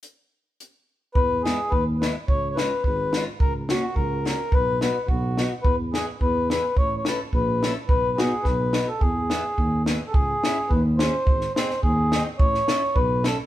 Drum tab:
HH |x---x---|--------|--------|--------|
SD |--------|--o---o-|--o---o-|--o---o-|
BD |--------|o---o---|o---o---|o---o---|

HH |--------|--------|--------|--------|
SD |--o---o-|--o---o-|--o---o-|--o-o-o-|
BD |o---o---|o---o---|o---o---|o---o---|

HH |--------|--------|--------|--------|
SD |--o---o-|--o---o-|-ooo--o-|-oo---o-|
BD |o---o---|o---o---|o---o---|o---o---|